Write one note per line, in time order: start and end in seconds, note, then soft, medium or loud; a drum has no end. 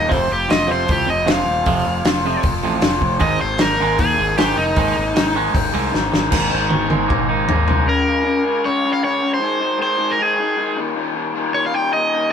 0.00 0.10 A#3 medium
0.00 3.17 C4 medium
0.00 0.12 D#5 medium
0.09 0.27 F1 medium
0.09 0.27 F2 medium
0.09 1.07 F2 medium
0.09 0.28 C3 medium
0.09 0.28 F3 loud
0.09 3.19 F3 medium
0.09 3.18 A4 medium
0.09 0.30 C5 medium
0.09 kick loud
0.09 open hi-hat medium
0.28 0.46 F1 medium
0.28 0.47 F2 medium
0.28 0.47 C3 medium
0.33 0.50 G4 medium
0.48 0.66 F1 medium
0.48 0.66 F2 medium
0.48 0.67 C3 medium
0.48 1.24 F4 medium
0.48 0.69 D#5 medium
0.48 snare loud
0.48 open hi-hat medium
0.67 0.85 F1 medium
0.67 0.85 F2 medium
0.67 0.86 C3 medium
0.67 0.87 F3 loud
0.67 1.45 C4 medium
0.72 0.89 C5 medium
0.86 1.05 C2 medium
0.86 1.05 F2 medium
0.86 1.05 C3 medium
0.86 1.84 F3 medium
0.86 kick loud
0.86 open hi-hat medium
0.91 1.09 G4 medium
1.05 1.23 F1 medium
1.05 1.25 F2 medium
1.05 1.25 C3 medium
1.05 2.04 A3 medium
1.10 1.31 D#5 medium
1.25 1.43 F1 medium
1.25 1.44 F2 medium
1.25 1.45 C3 medium
1.25 1.45 F3 medium
1.25 2.03 F4 medium
1.25 snare loud
1.25 open hi-hat medium
1.31 2.42 F5 medium
1.45 1.62 D#1 medium
1.45 1.63 F2 medium
1.45 1.64 C3 medium
1.45 2.22 C4 medium
1.64 1.82 F1 medium
1.64 2.62 F2 medium
1.64 1.84 F2 medium
1.64 1.85 C3 medium
1.64 1.85 F3 loud
1.64 kick loud
1.64 open hi-hat medium
1.86 2.02 F1 medium
1.86 2.04 F2 medium
1.86 2.04 C3 medium
2.04 2.36 F1 medium
2.04 2.23 F2 medium
2.04 2.23 C3 medium
2.04 2.80 F4 medium
2.04 snare loud
2.04 open hi-hat medium
2.23 2.43 F2 medium
2.23 2.43 C3 loud
2.23 2.44 F3 loud
2.23 3.01 C4 medium
2.42 2.60 F1 medium
2.42 2.62 F2 medium
2.42 2.62 C3 medium
2.42 3.21 F3 medium
2.42 kick loud
2.42 open hi-hat medium
2.61 2.79 A1 medium
2.61 2.81 F2 medium
2.61 2.82 C3 medium
2.61 2.82 F3 loud
2.61 3.20 A3 medium
2.81 2.98 F1 medium
2.81 3.00 F2 medium
2.81 3.00 C3 medium
2.81 3.20 F4 medium
2.81 snare loud
2.81 open hi-hat medium
3.01 3.17 F1 medium
3.01 3.19 F2 medium
3.01 3.19 C3 medium
3.01 3.79 C4 medium
3.01 kick medium
3.18 4.59 G#2 medium
3.18 3.39 G#2 loud
3.18 3.39 D#3 loud
3.18 3.39 G#3 loud
3.18 6.28 A#3 medium
3.18 6.28 C4 medium
3.18 6.28 G#4 medium
3.18 3.40 D#5 loud
3.18 kick loud
3.18 open hi-hat medium
3.22 3.38 G#1 medium
3.40 3.58 G#1 medium
3.40 3.58 G#2 medium
3.40 3.58 D#3 medium
3.40 3.60 C5 medium
3.58 3.77 G#1 medium
3.58 3.78 G#2 medium
3.58 3.78 D#3 medium
3.58 4.38 D#4 medium
3.58 3.98 A#4 medium
3.58 snare loud
3.58 open hi-hat medium
3.79 3.96 G#1 medium
3.79 3.98 G#2 medium
3.79 3.99 D#3 medium
3.79 3.99 G#3 loud
3.79 4.55 A#3 medium
3.98 4.15 D#2 medium
3.98 4.96 D#3 medium
3.98 4.17 D#3 medium
3.98 4.37 G#4 medium
3.98 kick loud
3.98 open hi-hat medium
4.18 4.35 G#1 medium
4.18 4.36 G#2 medium
4.18 4.36 D#3 medium
4.18 5.16 G#3 medium
4.38 4.55 G#1 medium
4.38 4.56 G#2 medium
4.38 4.56 D#3 medium
4.38 4.56 G#3 medium
4.38 5.14 D#4 medium
4.38 4.56 G4 loud
4.38 snare loud
4.38 open hi-hat medium
4.56 4.73 F1 medium
4.56 4.75 G#2 medium
4.56 4.75 D#3 medium
4.56 5.32 A#3 medium
4.56 5.32 D#4 loud
4.76 4.92 G#1 loud
4.76 5.73 G#2 medium
4.76 4.95 G#2 medium
4.76 4.95 D#3 loud
4.76 4.95 G#3 loud
4.76 kick loud
4.76 open hi-hat medium
4.97 5.13 G#1 medium
4.97 5.14 G#2 medium
4.97 5.14 D#3 medium
5.15 5.48 G#1 medium
5.15 5.33 G#2 medium
5.15 5.33 D#3 medium
5.15 5.91 D#4 medium
5.15 snare loud
5.15 open hi-hat medium
5.34 5.53 G#2 medium
5.34 5.53 D#3 medium
5.34 5.54 G#3 loud
5.34 6.10 A#3 medium
5.53 5.70 G#1 medium
5.53 5.72 G#2 medium
5.53 6.29 D#3 medium
5.53 5.72 D#3 medium
5.53 kick loud
5.53 open hi-hat medium
5.73 5.90 C2 medium
5.73 5.90 G#2 medium
5.73 5.91 D#3 medium
5.73 6.30 G#3 medium
5.73 5.92 G#3 medium
5.92 6.09 G#1 medium
5.92 6.10 G#2 medium
5.92 6.10 D#3 medium
5.92 6.31 D#4 medium
5.92 snare medium
6.11 6.29 G#1 loud
6.11 6.30 G#2 medium
6.11 6.30 D#3 medium
6.11 6.30 A#3 medium
6.11 snare medium
6.30 6.50 G#1 medium
6.30 6.70 G#2 medium
6.30 7.28 G#2 medium
6.30 6.68 D#3 medium
6.30 6.51 G#3 medium
6.30 6.50 A#3 medium
6.30 7.84 C4 medium
6.30 6.49 D#4 loud
6.30 7.85 A#4 medium
6.30 7.85 G#5 medium
6.30 kick loud
6.30 snare medium
6.30 crash loud
6.50 6.70 G#1 medium
6.50 6.68 D#3 medium
6.50 6.69 G#3 medium
6.50 6.70 A#3 medium
6.50 6.71 D#4 medium
6.69 7.67 D#3 medium
6.69 7.09 D#3 medium
6.69 6.91 G#3 medium
6.69 6.89 A#3 medium
6.69 6.89 D#4 medium
6.69 high tom medium
6.73 6.89 G#1 medium
6.90 7.08 G#1 medium
6.90 7.67 G#3 medium
6.90 7.29 G#3 medium
6.90 7.28 A#3 medium
6.90 7.27 D#4 medium
6.90 high tom medium
7.08 7.45 G#1 medium
7.08 7.47 A#3 medium
7.08 kick medium
7.08 mid tom medium
7.28 7.47 G#3 medium
7.28 7.47 A#3 medium
7.28 7.48 D#4 medium
7.28 7.87 D#4 medium
7.47 7.65 G#1 medium
7.47 7.85 G#2 medium
7.47 7.86 D#3 medium
7.47 7.86 G#3 medium
7.47 7.87 A#3 medium
7.47 7.86 A#3 loud
7.47 7.86 D#4 medium
7.47 floor tom loud
7.68 7.86 C2 medium
7.68 7.87 G#3 medium
7.68 floor tom medium
7.86 8.05 C#3 medium
7.86 8.06 G#3 loud
7.86 9.40 C#4 medium
7.86 8.05 C#4 loud
7.86 9.40 A#4 medium
7.86 8.68 A#4 medium
7.86 9.40 F5 medium
8.06 8.22 C#3 medium
8.06 8.24 G#3 loud
8.06 8.24 C#4 loud
8.24 8.42 C#3 loud
8.24 8.43 G#3 loud
8.24 8.43 C#4 loud
8.43 8.63 C#3 medium
8.43 8.64 G#3 medium
8.43 8.64 C#4 medium
8.64 8.84 C#3 loud
8.64 8.84 G#3 loud
8.64 8.84 C#4 loud
8.64 8.92 C#5 loud
8.85 9.02 C#3 medium
8.85 9.03 G#3 medium
8.85 9.03 C#4 loud
8.93 9.03 F5 loud
9.04 9.20 C#3 loud
9.04 9.21 G#3 loud
9.04 9.21 C#4 loud
9.04 9.34 C#5 loud
9.21 9.39 C#3 medium
9.21 9.39 G#3 loud
9.21 9.40 C#4 loud
9.34 9.78 C5 loud
9.40 9.59 G#2 loud
9.40 9.59 D#3 loud
9.40 9.60 G#3 loud
9.40 10.76 G#3 medium
9.40 10.76 C5 medium
9.40 10.76 G5 medium
9.60 9.77 G#2 medium
9.60 9.77 D#3 loud
9.60 9.78 G#3 loud
9.78 9.96 G#2 loud
9.78 9.97 D#3 loud
9.78 9.97 G#3 loud
9.82 10.11 C5 loud
9.97 10.17 G#2 medium
9.97 10.18 D#3 loud
9.97 10.18 G#3 loud
10.12 10.22 A#4 medium
10.18 10.38 G#2 loud
10.18 10.39 D#3 loud
10.18 10.39 G#3 loud
10.22 10.79 G#4 medium
10.39 10.56 G#2 medium
10.39 10.56 D#3 loud
10.39 10.58 G#3 loud
10.57 10.76 G#2 medium
10.57 10.76 D#3 loud
10.57 10.77 G#3 loud
10.76 10.94 D#2 loud
10.76 10.94 A#2 loud
10.76 10.95 D#3 loud
10.76 12.33 D#3 medium
10.76 12.33 C#4 medium
10.76 12.33 G4 medium
10.95 11.12 D#2 loud
10.95 11.13 A#2 loud
10.95 11.14 D#3 loud
11.14 11.33 D#2 loud
11.14 11.33 A#2 loud
11.14 11.34 D#3 loud
11.34 11.52 D#2 loud
11.34 11.53 A#2 loud
11.34 11.54 D#3 loud
11.54 11.72 D#2 medium
11.54 11.73 A#2 loud
11.54 11.73 D#3 loud
11.54 11.64 C#5 medium
11.66 11.74 F5 medium
11.73 11.93 D#2 loud
11.73 11.93 A#2 loud
11.73 11.93 D#3 loud
11.73 11.93 G5 medium
11.93 12.13 D#2 medium
11.93 12.13 A#2 loud
11.93 12.14 D#3 medium
11.93 12.30 D#5 medium
12.14 12.32 D#2 medium
12.14 12.33 A#2 loud
12.14 12.33 D#3 loud